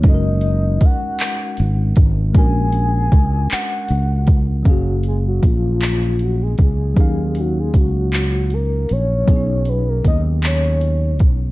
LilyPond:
<<
  \new Staff \with { instrumentName = "Soft synth lead" } { \time 6/8 \key fis \major \tempo 4. = 52 dis''4 fis''4. r8 | gis''4. fis''4 r8 | fis'8 gis'16 fis'16 eis'4 fis'16 gis'16 gis'8~ | gis'8 fis'16 gis'16 fis'4 ais'8 cis''8~ |
cis''8 b'16 ais'16 dis''8 cis''4 r8 | }
  \new Staff \with { instrumentName = "Tine electric piano" } { \time 6/8 \key fis \major <gis cis' dis' fis' a' ais'>2. | <gis cis' d' fis' ais'>2. | <fis ais cis' gis' eis''>2. | <fis ais cis' dis' eis''>2. |
<fis b cis' d' dis' gis'>2. | }
  \new Staff \with { instrumentName = "Fretless electric bass" } { \clef bass \time 6/8 \key fis \major fis,,4 r4 gis,,8 gis,,8 | ais,,4 cis,8 r8 cis,4 | fis,,4 ais,,4. cis,8 | dis,4 cis,4. ais,,8 |
b,,4 dis,4. b,,8 | }
  \new DrumStaff \with { instrumentName = "Drums" } \drummode { \time 6/8 <hh bd>8 hh8 <hh bd>8 <hc hh>8 hh8 <hh bd>8 | <hh bd>8 hh8 <hh bd>8 <hc hh>8 hh8 <hh bd>8 | <hh bd>8 hh8 <hh bd>8 <hc hh>8 hh8 <hh bd>8 | <hh bd>8 hh8 <hh bd>8 <hc hh>8 hh8 hh8 |
<hh bd>8 hh8 <hh bd>8 <hc hh>8 hh8 <hh bd>8 | }
>>